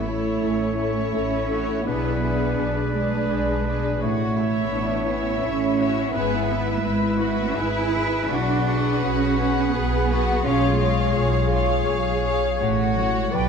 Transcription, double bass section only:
Already playing: A1
0.43 A1
1.15 A1
1.88 B1
2.59 B1
3.31 B1
4.01 A1
4.73 A1
5.43 A1
6.15 G#1
6.86 G#1
7.60 G#1
8.32 B1
9.05 B1
9.75 B1
10.45 B1
11.17 B1
11.88 B1
12.62 A1
13.34 B1

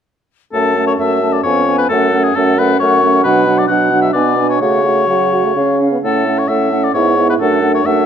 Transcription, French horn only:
0.53 A3
0.77 A3
1.00 A3
1.22 A3
1.45 B3
1.68 B3
1.90 A3
2.13 A3
2.36 A3
2.58 A3
2.80 A3
3.02 A3
3.25 F#3
3.47 F#3
3.69 F#3
3.92 F#3
4.14 B3
4.37 B3
4.61 A3
4.85 A3
5.08 F#3
5.45 A3
5.56 C#4
5.92 B3
6.03 A3
6.26 A3
6.49 A3
6.71 A3
6.94 B3
7.17 B3
7.40 A3
7.62 A3
7.85 A3

